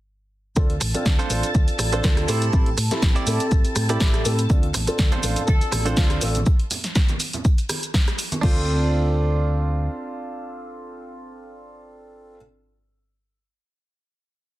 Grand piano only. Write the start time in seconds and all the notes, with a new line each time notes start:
0.56 C4 D4 F4 A4
0.94 C4 D4 F4 A4
1.29 C4 D4 F4 A4
1.92 C4 D4 F4 A4
2.04 C4 D4 F4 A4
2.28 C4 E4 G4 A4
2.53 C4 E4 G4 A4
2.91 C4 E4 G4 A4
3.26 C4 E4 G4 A4
3.89 C4 E4 G4 A4
4.00 C4 E4
4.25 C4 E4 G4 A4
4.49 C4 D4 F4 A4
4.87 C4 D4 F4 A4
5.22 C4 D4 F4 A4
5.86 C4 D4 F4 A4
5.97 C4 D4 F4 A4
6.22 C4 D4 F4 A4
8.42 C4 D4 F4 A4